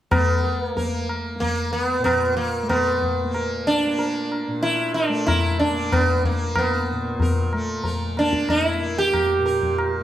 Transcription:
0.11 2.62 A3 medium
0.11 0.64 B3 medium
0.11 tabla na medium
0.11 tabla ge medium
0.44 0.74 A#4 soft
0.64 1.04 A#3 medium
0.75 1.36 A#3 medium
0.75 1.07 A#4 soft
0.75 tabla tin medium
0.75 tabla ge medium
1.09 tabla na medium
1.36 3.24 A#3 soft
1.40 1.72 A#3 medium
1.40 tabla tin medium
1.40 tabla ge medium
1.73 2.03 B3 medium
1.99 4.47 A#2 medium
2.04 2.36 B3 medium
2.04 tabla na medium
2.04 tabla ge medium
2.37 2.69 A#3 medium
2.63 5.09 A3 soft
2.69 3.30 B3 medium
2.69 tabla na medium
2.69 tabla ge medium
3.02 tabla ge soft
3.24 3.87 A#3 medium
3.34 3.65 A#4 soft
3.34 tabla na medium
3.67 4.62 D4 medium
3.87 5.70 A#3 medium
3.99 4.29 A#4 soft
3.99 tabla tin medium
4.32 tabla na soft
4.48 6.91 A#2 medium
4.62 4.94 E4 medium
4.62 tabla tin medium
4.94 5.26 D4 medium
4.94 tabla na soft
5.09 7.53 A3 medium
5.27 5.59 E4 medium
5.27 tabla na medium
5.27 tabla ge medium
5.59 5.93 D4 medium
5.59 tabla ge soft
5.70 6.30 A#3 soft
5.92 6.25 B3 medium
5.92 tabla na medium
5.92 tabla ge medium
6.24 6.58 A#3 medium
6.24 tabla ge soft
6.30 8.17 A#3 medium
6.56 7.50 B3 medium
6.56 tabla na medium
6.56 tabla ge medium
6.92 9.39 A#2 medium
7.20 7.52 A#4 soft
7.20 tabla tin medium
7.20 tabla ge medium
7.53 10.00 A3 medium
7.53 tabla na soft
7.84 8.15 A#4 soft
7.84 tabla tin medium
7.84 tabla ge medium
8.17 8.77 A#3 medium
8.17 8.50 D4 medium
8.17 tabla na soft
8.33 tabla ke soft
8.49 8.98 E4 medium
8.49 tabla na medium
8.49 tabla ge medium
8.77 10.03 A#3 medium
8.98 9.91 G4 loud
9.13 tabla na medium
9.13 tabla ge medium
9.39 10.03 A#2 medium
9.46 9.76 A#4 soft
9.46 tabla te medium
9.62 tabla ge soft
9.78 tabla na medium

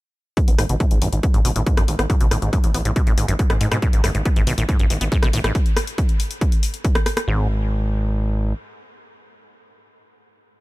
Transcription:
0.37 0.41 G#2 medium
0.37 kick loud
0.37 closed hi-hat medium
0.48 0.55 G#1 medium
0.48 0.51 B3 medium
0.48 closed hi-hat medium
0.59 0.66 G#1 loud
0.59 0.65 G#2 medium
0.59 cross-stick medium
0.59 open hi-hat loud
0.69 0.77 G#1 medium
0.69 0.75 B2 loud
0.69 closed hi-hat medium
0.80 0.86 A2 loud
0.80 kick loud
0.80 closed hi-hat medium
0.91 0.98 G#1 medium
0.91 1.00 G#2 medium
0.91 closed hi-hat medium
1.02 1.09 G#1 loud
1.02 1.08 F#2 loud
1.02 open hi-hat loud
1.13 1.20 G#1 medium
1.13 1.16 G#2 medium
1.13 closed hi-hat medium
1.23 1.27 B3 medium
1.23 kick loud
1.23 closed hi-hat medium
1.34 1.41 G#1 medium
1.34 1.40 G#2 loud
1.34 closed hi-hat medium
1.45 1.52 G#1 loud
1.45 1.51 B2 loud
1.45 open hi-hat loud
1.56 1.63 G#1 medium
1.56 1.62 A2 loud
1.56 closed hi-hat medium
1.67 1.75 G#2 medium
1.67 kick loud
1.67 closed hi-hat medium
1.77 1.85 G#1 medium
1.77 1.83 F#2 loud
1.77 cross-stick medium
1.77 closed hi-hat medium
1.88 1.95 G#1 loud
1.88 1.92 G#2 medium
1.88 open hi-hat loud
1.99 2.06 G#1 medium
1.99 2.02 B3 medium
1.99 cross-stick medium
1.99 closed hi-hat medium
2.10 2.16 G#2 loud
2.10 kick loud
2.10 closed hi-hat medium
2.20 2.28 G#1 medium
2.20 2.26 B2 loud
2.20 closed hi-hat medium
2.31 2.39 G#1 loud
2.31 2.37 A2 loud
2.31 cross-stick medium
2.31 open hi-hat loud
2.42 2.49 G#1 medium
2.42 2.51 G#2 medium
2.42 closed hi-hat medium
2.53 2.59 F#2 loud
2.53 kick loud
2.53 closed hi-hat medium
2.64 2.71 A1 medium
2.64 2.67 G#2 medium
2.64 closed hi-hat medium
2.74 2.82 A1 loud
2.74 2.78 B3 medium
2.74 open hi-hat loud
2.85 2.93 A1 medium
2.85 2.91 G#2 loud
2.85 closed hi-hat medium
2.96 3.02 B2 loud
2.96 kick loud
2.96 closed hi-hat medium
3.07 3.14 G#1 medium
3.07 3.13 A2 loud
3.07 closed hi-hat medium
3.18 3.25 G#1 medium
3.18 3.27 G#2 medium
3.18 open hi-hat loud
3.28 3.36 G#1 medium
3.28 3.34 F#2 loud
3.28 closed hi-hat medium
3.39 3.43 G#2 medium
3.39 kick loud
3.39 closed hi-hat medium
3.50 3.57 G#2 medium
3.50 3.53 B3 medium
3.50 cross-stick medium
3.50 closed hi-hat medium
3.61 3.67 G#2 loud
3.61 3.68 G#2 loud
3.61 open hi-hat loud
3.71 3.79 G#2 medium
3.71 3.77 B2 loud
3.71 cross-stick loud
3.71 closed hi-hat medium
3.82 3.88 A2 loud
3.82 kick loud
3.82 closed hi-hat medium
3.93 4.01 G#1 medium
3.93 4.02 G#2 medium
3.93 closed hi-hat medium
4.04 4.11 G#1 loud
4.04 4.10 F#2 medium
4.04 cross-stick medium
4.04 open hi-hat loud
4.15 4.22 G#1 medium
4.15 4.18 G#2 medium
4.15 closed hi-hat medium
4.25 4.29 B3 medium
4.25 kick loud
4.25 closed hi-hat medium
4.36 4.44 G#1 medium
4.36 4.42 G#2 loud
4.36 closed hi-hat medium
4.47 4.54 G#1 loud
4.47 4.53 B2 medium
4.47 open hi-hat loud
4.58 4.65 G#1 medium
4.58 4.64 A2 loud
4.58 closed hi-hat medium
4.69 4.78 G#2 medium
4.69 kick loud
4.69 closed hi-hat medium
4.79 4.87 G#1 medium
4.79 4.85 F#2 loud
4.79 closed hi-hat medium
4.90 4.98 G#1 loud
4.90 4.94 G#2 medium
4.90 open hi-hat loud
5.01 5.08 G#1 medium
5.01 5.05 B3 medium
5.01 closed hi-hat medium
5.12 5.18 G#2 loud
5.12 kick loud
5.12 closed hi-hat medium
5.23 5.30 G#1 medium
5.23 5.29 B2 loud
5.23 cross-stick medium
5.23 closed hi-hat medium
5.33 5.41 G#1 loud
5.33 5.39 A2 loud
5.33 open hi-hat loud
5.44 5.52 G#1 medium
5.44 5.53 G#2 medium
5.44 cross-stick loud
5.44 closed hi-hat medium
5.55 kick loud
5.55 closed hi-hat medium
5.66 closed hi-hat medium
5.77 cross-stick loud
5.77 open hi-hat loud
5.87 closed hi-hat medium
5.98 kick loud
5.98 closed hi-hat medium
6.09 closed hi-hat medium
6.20 open hi-hat loud
6.31 closed hi-hat medium
6.41 kick loud
6.41 closed hi-hat medium
6.52 closed hi-hat medium
6.63 open hi-hat loud
6.74 closed hi-hat medium
6.85 kick loud
6.85 closed hi-hat medium
6.95 cross-stick loud
6.95 closed hi-hat medium
7.06 cross-stick medium
7.06 open hi-hat loud
7.17 cross-stick loud
7.17 closed hi-hat medium
7.28 8.53 G#1 loud
7.28 7.48 G#2 medium

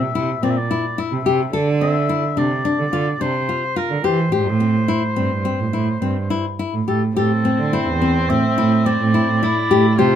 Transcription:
0.00 0.13 C3 medium
0.00 0.45 E5 medium
0.14 0.38 C3 medium
0.14 0.29 E4 medium
0.42 0.66 A#2 medium
0.42 0.57 C4 medium
0.42 0.51 D5 medium
0.50 0.58 E5 medium
0.57 1.01 D5 medium
0.71 0.85 E4 medium
0.98 1.12 E4 medium
0.98 1.54 E5 medium
1.12 1.24 C3 medium
1.26 1.49 C3 medium
1.26 1.40 G4 medium
1.53 2.24 D3 medium
1.53 1.67 A4 medium
1.81 1.95 C4 medium
1.81 2.40 E5 medium
2.09 2.23 E4 medium
2.37 2.61 C3 medium
2.37 2.51 D4 medium
2.37 3.23 D5 medium
2.65 2.79 D4 medium
2.79 2.91 D3 medium
2.92 3.16 D3 medium
2.92 3.07 F4 medium
3.20 3.44 C3 medium
3.20 3.35 D4 medium
3.20 3.78 C5 medium
3.49 3.63 F4 medium
3.76 3.90 F4 medium
3.76 4.06 A#4 medium
3.90 4.02 D3 medium
4.04 4.28 E3 medium
4.04 4.18 G4 medium
4.04 4.32 C5 medium
4.32 5.04 A2 medium
4.32 4.46 G4 medium
4.32 6.55 C5 medium
4.60 4.74 C4 medium
4.88 5.02 E4 medium
5.16 5.41 G2 medium
5.16 5.31 C4 medium
5.45 5.59 C4 medium
5.59 5.71 A2 medium
5.73 5.97 A2 medium
5.73 5.88 E4 medium
6.02 6.26 G2 medium
6.02 6.16 C4 medium
6.30 6.45 E4 medium
6.59 6.74 E4 medium
6.74 6.86 A2 medium
6.88 7.12 A2 medium
6.88 7.02 G4 medium
6.88 7.01 A4 medium
7.16 7.40 A2 medium
7.16 9.44 C4 medium
7.16 7.31 G4 medium
7.16 7.70 A4 medium
7.45 7.59 C4 medium
7.59 7.83 D3 medium
7.73 7.87 E4 medium
7.73 8.31 C5 medium
7.87 8.23 E2 medium
8.02 8.16 C4 medium
8.29 8.42 A2 medium
8.29 8.44 C4 medium
8.29 8.87 E5 medium
8.58 8.94 A2 medium
8.58 8.72 E4 medium
8.85 9.00 C4 medium
8.85 10.00 D5 medium
9.00 9.24 A2 medium
9.14 9.28 E4 medium
9.29 9.53 A2 medium
9.43 9.57 E4 medium
9.43 9.97 E4 medium
9.71 9.83 A2 medium
9.71 9.85 G4 medium
9.98 10.15 C3 medium
9.98 10.15 F4 medium
9.98 10.13 G4 medium
9.98 10.15 C5 medium

